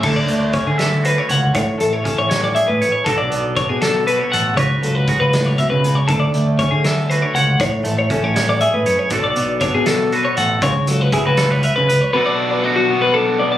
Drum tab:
CC |x-----|------|------|------|
HH |-xxxxx|xxxxxx|xxxxxx|xxxxxx|
SD |---o--|---o--|---o--|---o--|
BD |o-o---|o-o---|o-o---|o-o---|

CC |------|------|------|------|
HH |xxxxxx|xxxxxx|xxxxxx|xxxxxx|
SD |---o--|---o--|---o--|---o--|
BD |o-o---|o-o---|o-o---|o-o---|

CC |------|
HH |------|
SD |------|
BD |------|